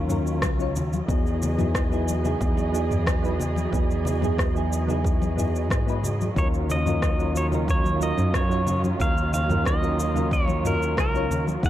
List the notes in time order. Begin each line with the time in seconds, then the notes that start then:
Already playing: D#2 D#3 F#3 C#4 F4
0.08 F#3 C#4 D#4 F4 A#4, mid tom, cabasa
0.27 cabasa
0.42 C#2, kick, cross-stick, high conga, cabasa
0.58 F#3 C#4 D#4 F4 C#5, cabasa
0.76 D#2, low conga, cabasa
0.93 high conga, cabasa
1.07 E2 E3 F#3 B3 D#4 E4 G#4 D#5, kick, cabasa
1.26 cabasa
1.42 low conga, cabasa
1.57 F#3 B3 D#4 E4 G#4, mid tom, high conga, cabasa
1.75 kick, cross-stick, cabasa
1.90 F#3 B3 D#4 E4 G#4, cabasa
2.08 high conga, cabasa
2.23 F#3 B3 D#4 E4 G#4, low conga, cabasa
2.41 E2, kick, cabasa
2.57 high conga, cabasa
2.72 F#3 B3 D#4 E4 G#4, cabasa
2.91 mid tom, cabasa
3.07 kick, cross-stick, high conga, cabasa
3.22 F#3 B3 D#4 E4 B4, cabasa
3.40 low conga, cabasa
3.56 high conga, cabasa
3.71 E2 F#3 B3 D#4 E4 G#4, kick, cabasa
3.91 cabasa
4.05 low conga, cabasa
4.21 F#3 B3 D#4 E4 G#4, mid tom, high conga, cabasa
4.39 kick, cross-stick, cabasa
4.54 F#3 B3 D#4 E4 G#4, cabasa
4.73 cabasa
4.87 F#3 B3 D#4 E4 G#4, low conga, cabasa
5.05 kick, cabasa
5.22 high conga, cabasa
5.36 F#3 B3 D#4 E4 G#4, mid tom, cabasa
5.56 cabasa
5.70 G#2, kick, cross-stick, high conga, cabasa
5.86 F#3 B3 D#4 E4 B4, cabasa
6.04 low conga, cabasa
6.21 high conga, cabasa
6.35 D#2 D#3 F#3 C#4 D#4 F4 A#4 C#5, kick, cabasa
6.54 cabasa
6.70 D#5, low conga, cabasa
6.85 F#3 C#4 D#4 F4 A#4, mid tom, high conga, cabasa
7.02 kick, cross-stick, cabasa
7.19 F#3 C#4 D#4 F4 A#4, cabasa
7.35 C#5, high conga, cabasa
7.51 F#3 C#4 D#4 F4 A#4, low conga, cabasa
7.68 C#5, kick, cabasa
7.84 high conga, cabasa
8.00 F#3 C#4 D#4 F4 A#4 D#5, cabasa
8.17 F#2, mid tom, cabasa
8.34 C#5, kick, cross-stick, high conga, cabasa
8.49 F#3 C#4 D#4 F4 C#5, cabasa
8.67 low conga, cabasa
8.84 high conga, cabasa
8.98 D#2 F#3 C#4 D#4 F4 A#4 F5, kick, cabasa
9.17 cabasa
9.33 F5, low conga, cabasa
9.48 F#3 C#4 D#4 F4 A#4, mid tom, high conga, cabasa
9.66 D#5, kick, cross-stick, cabasa
9.81 F#3 C#4 D#4 F4 A#4, cabasa
10.00 cabasa
10.14 F#3 C#4 D#4 F4 A#4, low conga, cabasa
10.31 C#5, kick, cabasa
10.48 high conga, cabasa
10.63 F#3 C#4 D#4 F4 A#4, mid tom, cabasa
10.83 cabasa
10.97 C#2 A#4, kick, cross-stick, high conga, cabasa
11.13 F#3 C#4 D#4 F4 C#5, cabasa
11.31 D#2, low conga, cabasa
11.47 high conga, cabasa
11.62 E2 E3 F#3 B3 D#4 E4 G#4 F#5, kick, cabasa